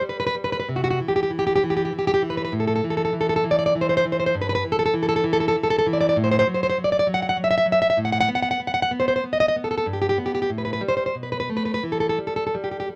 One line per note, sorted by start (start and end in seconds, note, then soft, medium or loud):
0.01 0.34 G3 soft
0.09 0.18 B4 medium
0.20 0.25 B4 medium
0.27 0.35 B4 medium
0.35 0.64 G3 medium
0.44 0.51 B4 medium
0.52 0.58 B4 medium
0.60 0.67 B4 medium
0.69 0.99 C3 medium
0.76 0.83 F#4 medium
0.84 0.89 F#4 medium
0.91 0.99 F#4 medium
1.00 1.29 E3 medium
1.08 1.15 G4 medium
1.16 1.22 G4 medium
1.23 1.30 G4 medium
1.30 1.62 E3 soft
1.39 1.46 G4 medium
1.47 1.54 G4 medium
1.56 1.62 G4 medium
1.63 1.91 E3 medium
1.70 1.75 G4 medium
1.77 1.84 G4 medium
1.85 1.92 G4 medium
1.93 2.21 E3 soft
1.99 2.06 G4 medium
2.07 2.13 G4 medium
2.14 2.22 G4 medium
2.22 2.50 E3 medium
2.30 2.36 B4 medium
2.37 2.43 B4 medium
2.45 2.53 B4 medium
2.52 2.82 A2 medium
2.60 2.66 A4 medium
2.67 2.74 A4 medium
2.76 2.83 A4 medium
2.84 3.12 E3 soft
2.90 2.96 A4 medium
2.97 3.04 A4 medium
3.05 3.13 A4 medium
3.13 3.43 E3 soft
3.21 3.28 A4 medium
3.29 3.35 A4 medium
3.36 3.43 A4 medium
3.44 3.74 E3 medium
3.51 3.58 D5 medium
3.59 3.65 D5 medium
3.66 3.73 D5 medium
3.75 4.04 E3 medium
3.81 3.88 C5 medium
3.89 3.96 C5 medium
3.97 4.04 C5 medium
4.05 4.32 E3 medium
4.12 4.18 C5 medium
4.20 4.25 C5 medium
4.26 4.34 C5 medium
4.35 4.63 G2 medium
4.41 4.48 B4 medium
4.49 4.54 B4 medium
4.55 4.63 B4 loud
4.65 4.92 E3 soft
4.72 4.78 A4 medium
4.79 4.84 A4 medium
4.86 4.93 A4 medium
4.94 5.23 E3 soft
5.03 5.07 A4 medium
5.09 5.15 A4 medium
5.16 5.24 A4 loud
5.24 5.55 E3 medium
5.33 5.39 A4 medium
5.40 5.47 A4 medium
5.48 5.55 A4 medium
5.56 5.85 E3 soft
5.63 5.69 A4 medium
5.70 5.77 A4 loud
5.79 5.86 A4 loud
5.86 6.14 E3 medium
5.93 5.99 D5 medium
6.01 6.08 D5 medium
6.09 6.16 D5 medium
6.16 6.46 A2 medium
6.24 6.30 C5 medium
6.31 6.38 C5 medium
6.39 6.47 C5 loud
6.47 6.77 F#3 medium
6.54 6.62 C5 medium
6.63 6.68 C5 medium
6.70 6.77 C5 medium
6.78 7.06 F#3 medium
6.84 6.91 D5 medium
6.92 6.98 D5 medium
6.99 7.07 D5 medium
7.07 7.36 F#3 medium
7.14 7.21 F#5 medium
7.22 7.28 F#5 medium
7.29 7.37 F#5 medium
7.37 7.64 F#3 soft
7.44 7.49 E5 medium
7.51 7.56 E5 loud
7.58 7.66 E5 loud
7.66 7.94 F#3 medium
7.72 7.81 E5 medium
7.82 7.89 E5 medium
7.90 7.98 E5 medium
7.97 8.28 A2 medium
8.05 8.11 F#5 medium
8.12 8.19 F#5 medium
8.21 8.29 F#5 loud
8.29 8.59 B3 medium
8.35 8.41 F#5 medium
8.42 8.50 F#5 medium
8.51 8.60 F#5 loud
8.60 8.90 B3 soft
8.67 8.73 F#5 medium
8.74 8.81 F#5 medium
8.82 8.91 F#5 medium
8.91 9.23 B3 soft
9.00 9.07 C5 medium
9.08 9.15 C5 medium
9.16 9.23 C5 medium
9.24 9.55 B3 soft
9.33 9.39 D#5 medium
9.40 9.47 D#5 medium
9.48 9.55 D#5 medium
9.56 9.84 B3 soft
9.64 9.70 A4 medium
9.71 9.76 A4 medium
9.78 9.85 A4 medium
9.86 10.17 G2 medium
9.93 10.00 G4 medium
10.02 10.08 G4 medium
10.09 10.17 G4 medium
10.18 10.47 B3 soft
10.26 10.34 G4 medium
10.35 10.41 G4 medium
10.42 10.50 G4 medium
10.50 10.81 A2 medium
10.58 10.64 B4 medium
10.65 10.72 B4 medium
10.73 10.81 B4 medium
10.81 11.11 G3 soft
10.88 10.96 C5 medium
10.97 11.05 C5 medium
11.06 11.14 C5 medium
11.15 11.47 B2 medium
11.23 11.31 B4 medium
11.32 11.39 B4 medium
11.40 11.48 B4 medium
11.50 11.80 A3 soft
11.57 11.64 B4 medium
11.65 11.73 B4 medium
11.74 11.83 B4 medium
11.83 12.17 E3 soft
11.92 11.99 A4 medium
12.00 12.08 A4 medium
12.09 12.18 A4 medium
12.18 12.53 G3 soft
12.27 12.35 A4 medium
12.36 12.44 A4 medium
12.47 12.54 A4 medium
12.54 12.87 G3 soft
12.64 12.70 G4 soft
12.71 12.79 G4 soft
12.80 12.88 G4 soft
12.89 12.96 G3 soft